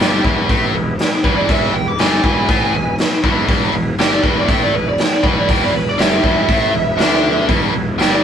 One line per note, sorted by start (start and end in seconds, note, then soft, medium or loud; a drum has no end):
0.00 0.23 G1 medium
0.00 0.23 G2 medium
0.00 0.24 G3 medium
0.00 0.20 B3 medium
0.00 0.20 E4 medium
0.00 0.21 G#4 medium
0.00 0.21 B4 medium
0.00 snare loud
0.00 open hi-hat soft
0.24 0.48 E1 loud
0.24 0.48 E2 medium
0.24 0.49 E3 loud
0.24 0.46 B3 medium
0.24 0.46 E4 medium
0.24 0.46 G#4 medium
0.24 0.47 B4 medium
0.24 kick medium
0.49 0.72 A1 medium
0.49 0.73 A2 medium
0.49 0.74 A3 medium
0.49 0.70 B3 medium
0.49 0.71 E4 medium
0.49 0.70 G#4 medium
0.49 0.71 B4 medium
0.49 kick loud
0.49 open hi-hat soft
0.73 0.97 E1 medium
0.73 0.94 E2 medium
0.73 0.95 B3 medium
0.73 0.95 E4 medium
0.73 0.96 G#4 medium
0.73 0.95 B4 loud
0.98 1.20 B3 medium
0.98 1.20 E4 medium
0.98 1.21 G#4 medium
0.98 1.21 B4 loud
0.98 snare loud
0.98 open hi-hat soft
1.24 1.48 E1 medium
1.24 1.47 E2 medium
1.24 1.48 E3 medium
1.24 1.45 B3 medium
1.24 1.46 E4 medium
1.24 1.45 G#4 medium
1.24 1.35 B4 medium
1.24 1.46 C#5 medium
1.24 kick medium
1.35 1.49 D5 medium
1.47 1.72 E1 medium
1.47 1.73 E2 medium
1.47 1.73 E3 medium
1.47 1.69 B3 medium
1.47 1.70 E4 medium
1.47 1.70 G#4 medium
1.47 1.70 B4 medium
1.47 1.73 E5 medium
1.47 kick medium
1.47 open hi-hat soft
1.73 1.97 E1 medium
1.73 1.94 E2 medium
1.73 1.95 B3 medium
1.73 1.95 E4 medium
1.73 1.95 G#4 medium
1.73 1.95 B4 medium
1.73 1.86 G5 medium
1.88 1.99 D6 medium
1.97 2.22 G1 medium
1.97 2.23 G2 medium
1.97 2.24 G3 medium
1.97 2.19 B3 medium
1.97 2.20 E4 medium
1.97 2.19 G#4 medium
1.97 2.20 B4 medium
1.97 2.96 G#5 loud
1.97 snare loud
1.97 open hi-hat medium
2.23 2.47 E1 loud
2.23 2.48 E2 medium
2.23 2.48 E3 loud
2.23 2.45 B3 medium
2.23 2.45 E4 medium
2.23 2.45 G#4 medium
2.23 2.45 B4 medium
2.23 kick medium
2.48 2.72 A1 medium
2.48 2.73 A2 medium
2.48 2.73 A3 medium
2.48 2.70 B3 medium
2.48 2.70 E4 medium
2.48 2.70 G#4 medium
2.48 2.70 B4 medium
2.48 kick loud
2.48 open hi-hat soft
2.74 2.97 E1 medium
2.74 2.94 E2 medium
2.74 2.95 B3 loud
2.74 2.95 E4 medium
2.74 2.95 G#4 medium
2.74 2.96 B4 loud
2.98 3.20 B3 loud
2.98 3.20 E4 loud
2.98 3.21 G#4 medium
2.98 3.20 B4 loud
2.98 snare loud
2.98 open hi-hat soft
3.23 3.47 E1 medium
3.23 3.47 E2 medium
3.23 3.48 E3 loud
3.23 3.45 B3 medium
3.23 3.45 E4 medium
3.23 3.46 G#4 medium
3.23 3.46 B4 medium
3.23 kick medium
3.48 3.72 E1 medium
3.48 3.73 E2 medium
3.48 3.73 E3 medium
3.48 3.70 B3 medium
3.48 3.70 E4 medium
3.48 3.70 G#4 medium
3.48 3.70 B4 loud
3.48 kick loud
3.48 open hi-hat soft
3.73 3.97 E1 medium
3.73 3.94 E2 medium
3.73 3.95 B3 medium
3.73 3.95 E4 medium
3.73 3.95 G#4 medium
3.73 3.95 B4 medium
3.98 4.22 G1 medium
3.98 4.23 G2 medium
3.98 4.23 G3 loud
3.98 4.19 B3 medium
3.98 4.20 E4 medium
3.98 4.20 G#4 medium
3.98 4.20 B4 medium
3.98 4.11 G5 loud
3.98 snare loud
3.98 open hi-hat soft
4.11 4.23 D5 medium
4.22 4.47 E1 loud
4.22 4.48 E2 medium
4.22 4.48 E3 medium
4.22 4.44 B3 medium
4.22 4.44 E4 medium
4.22 4.45 G#4 medium
4.22 4.44 B4 medium
4.22 4.37 B4 medium
4.22 kick medium
4.37 4.49 D5 medium
4.48 4.72 A1 medium
4.48 4.72 A2 medium
4.48 4.73 A3 loud
4.48 4.70 B3 medium
4.48 4.70 E4 medium
4.48 4.70 G#4 medium
4.48 4.71 B4 medium
4.48 4.61 G5 medium
4.48 kick medium
4.48 open hi-hat soft
4.62 4.76 D5 medium
4.73 4.97 E1 medium
4.73 4.93 E2 medium
4.73 4.95 B3 medium
4.73 4.95 E4 medium
4.73 4.95 G#4 medium
4.73 4.95 B4 medium
4.73 4.87 B4 medium
4.89 4.99 D5 medium
4.98 5.20 B3 medium
4.98 5.20 E4 medium
4.98 5.20 G#4 medium
4.98 5.20 B4 medium
4.98 5.12 G5 medium
4.98 snare loud
4.98 open hi-hat soft
5.13 5.24 D5 medium
5.23 5.47 E1 medium
5.23 5.47 E2 medium
5.23 5.48 E3 loud
5.23 5.45 B3 medium
5.23 5.46 E4 medium
5.23 5.46 G#4 medium
5.23 5.46 B4 medium
5.23 5.37 B4 medium
5.23 kick medium
5.38 5.49 D5 medium
5.49 5.72 E1 medium
5.49 5.72 E2 medium
5.49 5.73 E3 medium
5.49 5.71 B3 medium
5.49 5.71 E4 medium
5.49 5.71 G#4 medium
5.49 5.71 B4 medium
5.49 5.62 G5 loud
5.49 kick medium
5.49 open hi-hat medium
5.64 5.74 D5 medium
5.73 5.97 E1 medium
5.73 5.93 E2 medium
5.73 5.95 B3 medium
5.73 5.95 E4 medium
5.73 5.95 G#4 medium
5.73 5.96 B4 medium
5.73 5.89 B4 medium
5.89 6.00 D5 medium
5.97 6.22 G1 medium
5.97 6.22 G2 medium
5.97 6.23 G3 medium
5.97 6.19 B3 medium
5.97 6.20 E4 medium
5.97 6.19 G#4 medium
5.97 6.20 B4 medium
5.97 7.46 E5 loud
5.97 snare loud
5.97 open hi-hat medium
6.23 6.47 E1 medium
6.23 6.47 E2 medium
6.23 6.48 E3 loud
6.23 6.45 B3 medium
6.23 6.45 E4 medium
6.23 6.45 G#4 medium
6.23 6.46 B4 medium
6.23 kick medium
6.48 6.72 A1 medium
6.48 6.73 A2 medium
6.48 6.73 A3 medium
6.48 6.70 B3 medium
6.48 6.71 E4 medium
6.48 6.71 G#4 medium
6.48 6.71 B4 medium
6.48 kick medium
6.48 open hi-hat soft
6.73 6.97 E1 medium
6.73 6.93 E2 medium
6.73 6.95 B3 medium
6.73 6.96 E4 medium
6.73 6.96 G#4 medium
6.73 6.96 B4 loud
6.97 7.46 D2 medium
6.97 7.47 D3 medium
6.97 7.19 B3 loud
6.97 7.48 D4 medium
6.97 7.20 E4 medium
6.97 7.20 G#4 medium
6.97 7.20 B4 loud
6.97 snare loud
6.97 open hi-hat soft
7.14 snare soft
7.24 7.45 B3 medium
7.24 7.46 E4 medium
7.24 7.46 G#4 medium
7.24 7.46 B4 medium
7.48 7.72 E1 medium
7.48 7.72 E2 medium
7.48 7.73 E3 medium
7.48 7.70 B3 medium
7.48 7.70 E4 medium
7.48 7.70 G#4 medium
7.48 7.70 B4 loud
7.48 kick medium
7.48 open hi-hat soft
7.73 7.98 E1 medium
7.73 7.94 E2 medium
7.73 7.95 B3 medium
7.73 7.95 E4 medium
7.73 7.95 G#4 medium
7.73 7.96 B4 medium
7.97 8.23 G1 medium
7.97 8.23 G2 medium
7.97 8.23 G3 medium
7.97 8.20 B3 medium
7.97 8.20 E4 medium
7.97 8.20 G#4 medium
7.97 8.20 B4 medium
7.97 8.11 G5 medium
7.97 snare loud
7.97 open hi-hat soft
8.12 8.24 D5 medium